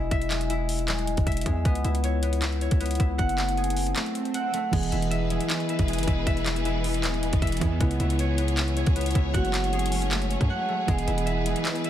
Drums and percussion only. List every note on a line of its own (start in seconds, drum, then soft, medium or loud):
0.11 kick loud
0.11 closed hi-hat medium
0.22 closed hi-hat medium
0.31 clap loud
0.31 closed hi-hat medium
0.41 closed hi-hat medium
0.50 closed hi-hat medium
0.69 open hi-hat medium
0.79 closed hi-hat medium
0.88 clap loud
0.88 closed hi-hat medium
0.99 closed hi-hat soft
1.07 closed hi-hat medium
1.17 kick loud
1.17 closed hi-hat medium
1.27 kick loud
1.27 closed hi-hat medium
1.32 closed hi-hat medium
1.37 closed hi-hat medium
1.41 closed hi-hat medium
1.46 kick loud
1.46 closed hi-hat medium
1.65 kick loud
1.65 closed hi-hat medium
1.75 closed hi-hat medium
1.85 closed hi-hat medium
1.95 closed hi-hat medium
2.04 closed hi-hat medium
2.23 closed hi-hat medium
2.33 closed hi-hat medium
2.42 clap loud
2.42 closed hi-hat medium
2.52 closed hi-hat soft
2.61 closed hi-hat medium
2.71 kick loud
2.71 closed hi-hat medium
2.81 closed hi-hat medium
2.86 closed hi-hat medium
2.91 closed hi-hat medium
2.95 closed hi-hat medium
3.00 kick loud
3.00 closed hi-hat medium
3.19 kick loud
3.19 closed hi-hat medium
3.29 closed hi-hat medium
3.38 clap loud
3.38 closed hi-hat medium
3.49 closed hi-hat medium
3.57 closed hi-hat soft
3.64 closed hi-hat medium
3.70 closed hi-hat medium
3.77 open hi-hat medium
3.87 closed hi-hat medium
3.96 clap loud
3.96 closed hi-hat medium
4.06 closed hi-hat soft
4.15 closed hi-hat medium
4.25 closed hi-hat soft
4.34 closed hi-hat medium
4.54 closed hi-hat medium
4.73 kick loud
4.73 closed hi-hat medium
4.73 crash loud
4.83 closed hi-hat medium
4.92 closed hi-hat medium
5.02 closed hi-hat medium
5.11 closed hi-hat medium
5.30 closed hi-hat medium
5.40 closed hi-hat medium
5.50 clap loud
5.50 closed hi-hat medium
5.60 closed hi-hat soft
5.69 closed hi-hat medium
5.79 kick loud
5.79 closed hi-hat medium
5.88 closed hi-hat medium
5.93 closed hi-hat medium
5.98 closed hi-hat medium
6.03 closed hi-hat medium
6.08 kick loud
6.08 closed hi-hat medium
6.27 kick loud
6.27 closed hi-hat medium
6.37 closed hi-hat medium
6.46 clap loud
6.46 closed hi-hat medium
6.56 closed hi-hat medium
6.65 closed hi-hat medium
6.84 open hi-hat medium
6.94 closed hi-hat medium
7.03 clap loud
7.03 closed hi-hat medium
7.14 closed hi-hat soft
7.23 closed hi-hat medium
7.33 kick loud
7.33 closed hi-hat medium
7.42 kick loud
7.42 closed hi-hat medium
7.47 closed hi-hat medium
7.52 closed hi-hat medium
7.57 closed hi-hat medium
7.61 kick loud
7.61 closed hi-hat medium
7.81 kick loud
7.81 closed hi-hat medium
7.91 closed hi-hat medium
8.00 closed hi-hat medium
8.10 closed hi-hat medium
8.19 closed hi-hat medium
8.38 closed hi-hat medium
8.48 closed hi-hat medium
8.57 clap loud
8.57 closed hi-hat medium
8.68 closed hi-hat soft
8.77 closed hi-hat medium
8.87 kick loud
8.87 closed hi-hat medium
8.96 closed hi-hat medium
9.01 closed hi-hat medium
9.06 closed hi-hat medium
9.11 closed hi-hat medium
9.15 kick loud
9.15 closed hi-hat medium
9.34 kick loud
9.34 closed hi-hat medium
9.45 closed hi-hat medium
9.54 clap loud
9.54 closed hi-hat medium
9.64 closed hi-hat medium
9.73 closed hi-hat soft
9.79 closed hi-hat medium
9.86 closed hi-hat medium
9.92 open hi-hat medium
10.02 closed hi-hat medium
10.11 clap loud
10.11 closed hi-hat medium
10.22 closed hi-hat soft
10.31 closed hi-hat medium
10.41 kick loud
10.41 closed hi-hat soft
10.88 kick loud
10.88 closed hi-hat medium
10.98 closed hi-hat medium
11.08 closed hi-hat medium
11.18 closed hi-hat medium
11.27 closed hi-hat medium
11.46 closed hi-hat medium
11.56 closed hi-hat medium
11.65 clap loud
11.65 closed hi-hat medium
11.76 closed hi-hat soft
11.84 closed hi-hat medium